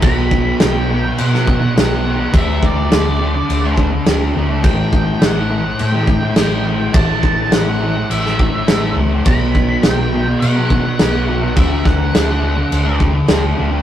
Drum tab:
CC |x---x---x---x---|x---x---x---x---|x---x---x---x---|x---x---x---x---|
SD |----o----o--o---|----o-------o---|----o-------o---|----o----o--o---|
BD |o-o-------o-----|o-o-------o-----|o-o-------o-----|o-o-------o-----|

CC |x---x---x---x---|x---x---x---x---|
SD |----o-------o---|--o-o-------o---|
BD |o-o-------o-----|o-o-------o-----|